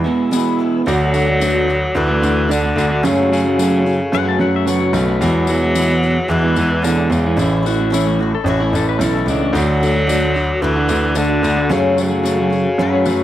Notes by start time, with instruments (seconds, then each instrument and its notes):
Already playing: grand piano B3 E4 G#4 B4, tonewheel organ B4 G#5 E6
0.04 clean electric guitar E2 B2 E3 G#3 B3 E4
0.31 clean electric guitar E2 B2 E3 G#3 B3 E4, grand piano B3 E4 G#4 B4, tambourine
0.59 twelve-string acoustic guitar E3 G#3 B3 E4
0.86 grand piano D2 D4 F#4 A4 D5, clean electric guitar D3 A3 D4 F#4, tenor saxophone F#3, tonewheel organ A4 F#5 D6, tambourine
1.13 clean electric guitar D3 A3 D4 F#4, tambourine
1.27 clean electric guitar A3 D4 F#4
1.40 clean electric guitar D3 A3 D4 F#4, grand piano D4 F#4 A4 B4, tambourine
1.53 clean electric guitar A3 D4 F#4
1.68 twelve-string acoustic guitar A3 D4 F#4, muted clean electric guitar stroke, tambourine
1.95 grand piano D2 D4 F#4 A4 B4, twelve-string acoustic guitar D3 A3 D4 F#4, tenor saxophone E3
2.08 clean electric guitar A3 D4 F#4
2.22 grand piano D2, clean electric guitar D3 A3 D4 F#4, tambourine
2.49 clean electric guitar D3 A3 D4 F#4, tenor saxophone D3, grand piano D4 F#4 A4 D5, tambourine
2.63 clean electric guitar A3 D4 F#4
2.76 grand piano D2, clean electric guitar D3 A3 D4 F#4, tambourine
2.89 clean electric guitar A3 D4 F#4
3.03 grand piano F#2 C#4 F#4 A4 C#5, clean electric guitar F#2 C#3 F#3 A3 C#4 F#4, tenor saxophone C#3, tonewheel organ C#6, tambourine
3.30 tenor saxophone C#3, clean electric guitar F#3 A3 C#4 F#4, tambourine
3.45 clean electric guitar F#3 A3 C#4 F#4
3.57 clean electric guitar F#2 C#3 F#3 A3 C#4 F#4, grand piano C#4 F#4 A4 C#5, tambourine
3.71 clean electric guitar F#3 A3 C#4 F#4
3.85 twelve-string acoustic guitar F#3 A3 C#4 F#4, muted clean electric guitar stroke, tambourine
4.11 grand piano F#2 C#4 F#4 A4 B4, twelve-string acoustic guitar F#2 C#3 F#3 A3 C#4, pedal steel guitar F#5
4.16 twelve-string acoustic guitar F#4
4.24 clean electric guitar F#3 A3 C#4 F#4
4.28 pedal steel guitar A5
4.38 grand piano F#2, clean electric guitar F#3 A3 C#4 F#4, pedal steel guitar F#5
4.43 twelve-string acoustic guitar F#3
4.56 pedal steel guitar E5
4.65 clean electric guitar F#2 C#3 F#3 A3 C#4 F#4, grand piano C#4 F#4 A4 B4, pedal steel guitar C#5, tambourine
4.79 clean electric guitar F#3 A3 C#4 F#4
4.93 grand piano B1, clean electric guitar F#3 A3 C#4 F#4, pedal steel guitar B4, tambourine
5.07 clean electric guitar F#3 A3 C#4 F#4
5.20 clean electric guitar E2 B2 E3 G#3 B3 E4, grand piano E2 B3 E4 G#4 B4, tenor saxophone F#3, tonewheel organ G#4 E5 B5, tambourine
5.47 clean electric guitar E3 G#3 B3 E4, tambourine
5.62 clean electric guitar E3 G#3 B3 E4
5.73 clean electric guitar E2 B2 E3 G#3, grand piano B3 E4 G#4 B4, tambourine
5.78 clean electric guitar B3 E4
5.90 clean electric guitar E3 G#3 B3 E4
6.03 twelve-string acoustic guitar E3 G#3 B3 E4, muted clean electric guitar stroke, tambourine
6.28 twelve-string acoustic guitar E2 B2 E3 G#3 B3 E4, grand piano E2 B3 E4 G#4 B4, tenor saxophone E3
6.43 clean electric guitar E3 G#3 B3 E4
6.55 grand piano E2, clean electric guitar E3 G#3, twelve-string acoustic guitar E4, tambourine
6.60 clean electric guitar B3 E4
6.81 clean electric guitar E2 B2 E3, tenor saxophone D3, grand piano B3 E4 G#4 C#5, tambourine
6.86 clean electric guitar G#3 B3 E4
6.97 clean electric guitar E3 G#3 B3 E4
7.10 grand piano E2, tenor saxophone C#3, clean electric guitar E3 G#3 B3 E4, tambourine
7.25 clean electric guitar E3 G#3 B3 E4
7.36 grand piano A1 C#4 E4 A4 C#5, clean electric guitar A2 E3, tonewheel organ A4 E5 C#6, tambourine
7.40 clean electric guitar A3 C#4 E4
7.63 clean electric guitar E3 A3, twelve-string acoustic guitar E4, tambourine
7.67 clean electric guitar C#4 E4, pedal steel guitar F#4
7.78 clean electric guitar A3 C#4 E4
7.91 clean electric guitar A2 E3 A3 C#4 E4, grand piano C#4 E4 A4 C#5, pedal steel guitar E4, tambourine
8.06 clean electric guitar A3 C#4 E4, pedal steel guitar C#4
8.19 twelve-string acoustic guitar A3 C#4 E4, pedal steel guitar F#4, muted clean electric guitar stroke
8.35 pedal steel guitar A4
8.44 grand piano A1 C#4 E4 A4 C#5, twelve-string acoustic guitar A2 E3 A3 C#4 E4
8.50 pedal steel guitar F#4
8.60 clean electric guitar A3 C#4 E4, pedal steel guitar E4
8.73 grand piano A1, clean electric guitar E3 A3 C#4, pedal steel guitar A4, tambourine
8.77 clean electric guitar E4
8.89 pedal steel guitar B4
8.99 grand piano B1 C#4 E4 A4 C#5, clean electric guitar A2 E3 A3 C#4 E4, pedal steel guitar A4, tambourine
9.14 clean electric guitar A3 C#4 E4
9.26 grand piano C#2, clean electric guitar E3 A3 C#4, pedal steel guitar D4, twelve-string acoustic guitar E4, tambourine
9.31 clean electric guitar E4
9.42 clean electric guitar A3 C#4 E4
9.52 grand piano D2 D4 F#4 A4 D5, clean electric guitar D3 A3, tenor saxophone F#3, tonewheel organ F#5 D6, tambourine
9.58 clean electric guitar D4 F#4
9.80 clean electric guitar D3 A3, twelve-string acoustic guitar F#4, tambourine
9.85 clean electric guitar D4 F#4
9.96 clean electric guitar A3 D4 F#4
10.07 clean electric guitar D3 A3 D4, grand piano D4 F#4 A4 D5, tambourine
10.11 clean electric guitar F#4
10.23 clean electric guitar A3 D4 F#4
10.34 twelve-string acoustic guitar A3 D4 F#4, muted clean electric guitar stroke, tambourine
10.62 grand piano D2 D4 F#4 A4 B4, twelve-string acoustic guitar D3 A3 D4 F#4, tenor saxophone E3
10.76 clean electric guitar A3 D4 F#4
10.88 grand piano D2, clean electric guitar D3 A3 D4, twelve-string acoustic guitar F#4, tambourine
10.92 clean electric guitar F#4
11.15 clean electric guitar D3 A3 D4 F#4, tenor saxophone D3, grand piano D4 F#4 A4 D5, tambourine
11.29 clean electric guitar A3 D4 F#4
11.43 grand piano D2, clean electric guitar D3 A3 D4 F#4, tambourine
11.56 clean electric guitar A3 D4 F#4
11.70 clean electric guitar F#2 C#3 F#3 A3 C#4 F#4, grand piano F#2 C#4 F#4 A4 C#5, tenor saxophone C#3, tonewheel organ C#6, tambourine
11.97 tenor saxophone C#3, clean electric guitar F#3 A3 C#4 F#4, tambourine
12.10 clean electric guitar F#3 A3 C#4 F#4
12.23 clean electric guitar F#2 C#3 F#3 A3 C#4 F#4, grand piano C#4 F#4 A4 C#5, tambourine
12.38 clean electric guitar F#3 A3 C#4 F#4
12.50 twelve-string acoustic guitar F#3 A3 C#4 F#4, muted clean electric guitar stroke, tambourine
12.78 grand piano F#2 C#4 F#4 A4 C#5, twelve-string acoustic guitar F#2 C#3 F#3 A3 C#4 F#4
12.83 pedal steel guitar B4
12.92 clean electric guitar F#3 A3 C#4 F#4
13.06 grand piano F#2, clean electric guitar F#3 A3 C#4 F#4, tambourine
13.10 twelve-string acoustic guitar F#3